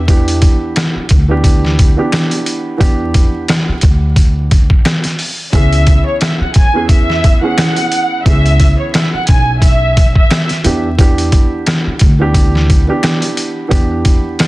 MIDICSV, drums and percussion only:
0, 0, Header, 1, 2, 480
1, 0, Start_track
1, 0, Tempo, 681818
1, 56, Time_signature, 4, 2, 24, 8
1, 10191, End_track
2, 0, Start_track
2, 0, Title_t, "Drums"
2, 57, Note_on_c, 9, 36, 115
2, 58, Note_on_c, 9, 42, 90
2, 127, Note_off_c, 9, 36, 0
2, 129, Note_off_c, 9, 42, 0
2, 196, Note_on_c, 9, 42, 58
2, 267, Note_off_c, 9, 42, 0
2, 294, Note_on_c, 9, 42, 84
2, 296, Note_on_c, 9, 36, 91
2, 364, Note_off_c, 9, 42, 0
2, 367, Note_off_c, 9, 36, 0
2, 535, Note_on_c, 9, 42, 102
2, 537, Note_on_c, 9, 26, 68
2, 542, Note_on_c, 9, 38, 126
2, 547, Note_on_c, 9, 37, 101
2, 605, Note_off_c, 9, 42, 0
2, 607, Note_off_c, 9, 26, 0
2, 612, Note_off_c, 9, 38, 0
2, 617, Note_off_c, 9, 37, 0
2, 767, Note_on_c, 9, 42, 77
2, 779, Note_on_c, 9, 36, 97
2, 838, Note_off_c, 9, 42, 0
2, 850, Note_off_c, 9, 36, 0
2, 1012, Note_on_c, 9, 36, 101
2, 1014, Note_on_c, 9, 42, 98
2, 1083, Note_off_c, 9, 36, 0
2, 1084, Note_off_c, 9, 42, 0
2, 1159, Note_on_c, 9, 38, 38
2, 1229, Note_off_c, 9, 38, 0
2, 1259, Note_on_c, 9, 42, 76
2, 1261, Note_on_c, 9, 36, 100
2, 1330, Note_off_c, 9, 42, 0
2, 1332, Note_off_c, 9, 36, 0
2, 1495, Note_on_c, 9, 26, 72
2, 1497, Note_on_c, 9, 42, 86
2, 1500, Note_on_c, 9, 38, 121
2, 1505, Note_on_c, 9, 37, 96
2, 1565, Note_off_c, 9, 26, 0
2, 1568, Note_off_c, 9, 42, 0
2, 1570, Note_off_c, 9, 38, 0
2, 1576, Note_off_c, 9, 37, 0
2, 1628, Note_on_c, 9, 42, 54
2, 1699, Note_off_c, 9, 42, 0
2, 1735, Note_on_c, 9, 42, 77
2, 1805, Note_off_c, 9, 42, 0
2, 1975, Note_on_c, 9, 36, 116
2, 1977, Note_on_c, 9, 42, 93
2, 2046, Note_off_c, 9, 36, 0
2, 2048, Note_off_c, 9, 42, 0
2, 2213, Note_on_c, 9, 42, 84
2, 2215, Note_on_c, 9, 36, 89
2, 2283, Note_off_c, 9, 42, 0
2, 2285, Note_off_c, 9, 36, 0
2, 2453, Note_on_c, 9, 42, 105
2, 2456, Note_on_c, 9, 26, 68
2, 2460, Note_on_c, 9, 38, 124
2, 2465, Note_on_c, 9, 37, 100
2, 2523, Note_off_c, 9, 42, 0
2, 2527, Note_off_c, 9, 26, 0
2, 2530, Note_off_c, 9, 38, 0
2, 2535, Note_off_c, 9, 37, 0
2, 2685, Note_on_c, 9, 42, 78
2, 2697, Note_on_c, 9, 36, 97
2, 2755, Note_off_c, 9, 42, 0
2, 2767, Note_off_c, 9, 36, 0
2, 2930, Note_on_c, 9, 36, 104
2, 2932, Note_on_c, 9, 42, 98
2, 3001, Note_off_c, 9, 36, 0
2, 3002, Note_off_c, 9, 42, 0
2, 3177, Note_on_c, 9, 42, 76
2, 3179, Note_on_c, 9, 36, 99
2, 3247, Note_off_c, 9, 42, 0
2, 3250, Note_off_c, 9, 36, 0
2, 3309, Note_on_c, 9, 36, 94
2, 3379, Note_off_c, 9, 36, 0
2, 3415, Note_on_c, 9, 26, 70
2, 3416, Note_on_c, 9, 42, 85
2, 3418, Note_on_c, 9, 38, 119
2, 3423, Note_on_c, 9, 37, 100
2, 3486, Note_off_c, 9, 26, 0
2, 3486, Note_off_c, 9, 42, 0
2, 3489, Note_off_c, 9, 38, 0
2, 3494, Note_off_c, 9, 37, 0
2, 3546, Note_on_c, 9, 42, 54
2, 3554, Note_on_c, 9, 38, 36
2, 3617, Note_off_c, 9, 42, 0
2, 3625, Note_off_c, 9, 38, 0
2, 3652, Note_on_c, 9, 46, 53
2, 3722, Note_off_c, 9, 46, 0
2, 3894, Note_on_c, 9, 36, 110
2, 3895, Note_on_c, 9, 42, 91
2, 3964, Note_off_c, 9, 36, 0
2, 3965, Note_off_c, 9, 42, 0
2, 4031, Note_on_c, 9, 42, 58
2, 4101, Note_off_c, 9, 42, 0
2, 4130, Note_on_c, 9, 42, 80
2, 4133, Note_on_c, 9, 36, 89
2, 4200, Note_off_c, 9, 42, 0
2, 4203, Note_off_c, 9, 36, 0
2, 4370, Note_on_c, 9, 42, 102
2, 4376, Note_on_c, 9, 26, 67
2, 4377, Note_on_c, 9, 38, 118
2, 4382, Note_on_c, 9, 37, 100
2, 4441, Note_off_c, 9, 42, 0
2, 4447, Note_off_c, 9, 26, 0
2, 4448, Note_off_c, 9, 38, 0
2, 4453, Note_off_c, 9, 37, 0
2, 4604, Note_on_c, 9, 42, 75
2, 4617, Note_on_c, 9, 36, 98
2, 4675, Note_off_c, 9, 42, 0
2, 4687, Note_off_c, 9, 36, 0
2, 4850, Note_on_c, 9, 36, 109
2, 4851, Note_on_c, 9, 42, 97
2, 4920, Note_off_c, 9, 36, 0
2, 4922, Note_off_c, 9, 42, 0
2, 4996, Note_on_c, 9, 38, 39
2, 5067, Note_off_c, 9, 38, 0
2, 5097, Note_on_c, 9, 42, 74
2, 5099, Note_on_c, 9, 36, 97
2, 5167, Note_off_c, 9, 42, 0
2, 5169, Note_off_c, 9, 36, 0
2, 5334, Note_on_c, 9, 26, 71
2, 5335, Note_on_c, 9, 42, 85
2, 5338, Note_on_c, 9, 38, 119
2, 5343, Note_on_c, 9, 37, 100
2, 5404, Note_off_c, 9, 26, 0
2, 5406, Note_off_c, 9, 42, 0
2, 5408, Note_off_c, 9, 38, 0
2, 5413, Note_off_c, 9, 37, 0
2, 5467, Note_on_c, 9, 42, 54
2, 5537, Note_off_c, 9, 42, 0
2, 5573, Note_on_c, 9, 42, 79
2, 5643, Note_off_c, 9, 42, 0
2, 5814, Note_on_c, 9, 36, 114
2, 5815, Note_on_c, 9, 42, 90
2, 5884, Note_off_c, 9, 36, 0
2, 5886, Note_off_c, 9, 42, 0
2, 5953, Note_on_c, 9, 42, 60
2, 6023, Note_off_c, 9, 42, 0
2, 6051, Note_on_c, 9, 42, 83
2, 6054, Note_on_c, 9, 36, 89
2, 6122, Note_off_c, 9, 42, 0
2, 6124, Note_off_c, 9, 36, 0
2, 6293, Note_on_c, 9, 42, 101
2, 6294, Note_on_c, 9, 26, 67
2, 6300, Note_on_c, 9, 38, 121
2, 6305, Note_on_c, 9, 37, 98
2, 6363, Note_off_c, 9, 42, 0
2, 6364, Note_off_c, 9, 26, 0
2, 6370, Note_off_c, 9, 38, 0
2, 6375, Note_off_c, 9, 37, 0
2, 6525, Note_on_c, 9, 42, 76
2, 6537, Note_on_c, 9, 36, 97
2, 6596, Note_off_c, 9, 42, 0
2, 6608, Note_off_c, 9, 36, 0
2, 6771, Note_on_c, 9, 36, 106
2, 6772, Note_on_c, 9, 42, 101
2, 6841, Note_off_c, 9, 36, 0
2, 6843, Note_off_c, 9, 42, 0
2, 7019, Note_on_c, 9, 42, 76
2, 7020, Note_on_c, 9, 36, 102
2, 7089, Note_off_c, 9, 42, 0
2, 7090, Note_off_c, 9, 36, 0
2, 7149, Note_on_c, 9, 36, 93
2, 7219, Note_off_c, 9, 36, 0
2, 7255, Note_on_c, 9, 26, 71
2, 7257, Note_on_c, 9, 42, 85
2, 7259, Note_on_c, 9, 38, 123
2, 7265, Note_on_c, 9, 37, 94
2, 7325, Note_off_c, 9, 26, 0
2, 7327, Note_off_c, 9, 42, 0
2, 7330, Note_off_c, 9, 38, 0
2, 7335, Note_off_c, 9, 37, 0
2, 7387, Note_on_c, 9, 42, 53
2, 7395, Note_on_c, 9, 38, 38
2, 7458, Note_off_c, 9, 42, 0
2, 7466, Note_off_c, 9, 38, 0
2, 7493, Note_on_c, 9, 42, 77
2, 7564, Note_off_c, 9, 42, 0
2, 7734, Note_on_c, 9, 36, 117
2, 7735, Note_on_c, 9, 42, 93
2, 7804, Note_off_c, 9, 36, 0
2, 7806, Note_off_c, 9, 42, 0
2, 7873, Note_on_c, 9, 42, 57
2, 7943, Note_off_c, 9, 42, 0
2, 7971, Note_on_c, 9, 42, 83
2, 7973, Note_on_c, 9, 36, 87
2, 8041, Note_off_c, 9, 42, 0
2, 8044, Note_off_c, 9, 36, 0
2, 8212, Note_on_c, 9, 42, 105
2, 8214, Note_on_c, 9, 26, 67
2, 8219, Note_on_c, 9, 38, 125
2, 8224, Note_on_c, 9, 37, 101
2, 8283, Note_off_c, 9, 42, 0
2, 8285, Note_off_c, 9, 26, 0
2, 8289, Note_off_c, 9, 38, 0
2, 8295, Note_off_c, 9, 37, 0
2, 8444, Note_on_c, 9, 42, 76
2, 8457, Note_on_c, 9, 36, 96
2, 8514, Note_off_c, 9, 42, 0
2, 8527, Note_off_c, 9, 36, 0
2, 8690, Note_on_c, 9, 36, 106
2, 8691, Note_on_c, 9, 42, 100
2, 8760, Note_off_c, 9, 36, 0
2, 8762, Note_off_c, 9, 42, 0
2, 8837, Note_on_c, 9, 38, 38
2, 8908, Note_off_c, 9, 38, 0
2, 8939, Note_on_c, 9, 42, 75
2, 8940, Note_on_c, 9, 36, 94
2, 9009, Note_off_c, 9, 42, 0
2, 9010, Note_off_c, 9, 36, 0
2, 9173, Note_on_c, 9, 26, 71
2, 9176, Note_on_c, 9, 42, 84
2, 9178, Note_on_c, 9, 38, 117
2, 9183, Note_on_c, 9, 37, 98
2, 9243, Note_off_c, 9, 26, 0
2, 9246, Note_off_c, 9, 42, 0
2, 9249, Note_off_c, 9, 38, 0
2, 9254, Note_off_c, 9, 37, 0
2, 9307, Note_on_c, 9, 42, 55
2, 9378, Note_off_c, 9, 42, 0
2, 9414, Note_on_c, 9, 42, 77
2, 9485, Note_off_c, 9, 42, 0
2, 9654, Note_on_c, 9, 36, 114
2, 9655, Note_on_c, 9, 42, 92
2, 9724, Note_off_c, 9, 36, 0
2, 9725, Note_off_c, 9, 42, 0
2, 9890, Note_on_c, 9, 42, 83
2, 9893, Note_on_c, 9, 36, 89
2, 9961, Note_off_c, 9, 42, 0
2, 9964, Note_off_c, 9, 36, 0
2, 10131, Note_on_c, 9, 42, 105
2, 10135, Note_on_c, 9, 26, 67
2, 10138, Note_on_c, 9, 38, 124
2, 10143, Note_on_c, 9, 37, 102
2, 10191, Note_off_c, 9, 26, 0
2, 10191, Note_off_c, 9, 37, 0
2, 10191, Note_off_c, 9, 38, 0
2, 10191, Note_off_c, 9, 42, 0
2, 10191, End_track
0, 0, End_of_file